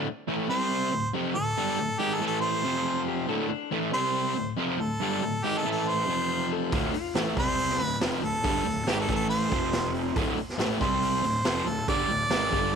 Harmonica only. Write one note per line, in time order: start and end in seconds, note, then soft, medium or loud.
0.50 1.10 C5 medium
1.35 2.01 A4 medium
1.99 2.16 G4 medium
2.15 2.26 A4 medium
2.27 2.40 A4 medium
2.41 3.02 C5 medium
3.94 4.54 C5 medium
4.80 5.46 A4 medium
5.44 5.59 G4 medium
5.58 5.71 A4 medium
5.71 5.90 A4 medium
5.88 6.52 C5 medium
7.39 7.81 C5 loud
7.81 7.99 B4 loud
8.24 8.89 A4 medium
8.88 9.00 G4 medium
9.01 9.14 A4 medium
9.15 9.29 A4 medium
9.30 9.91 C5 medium
10.82 11.69 C5 medium
11.68 11.88 A4 medium
11.89 12.75 D5 loud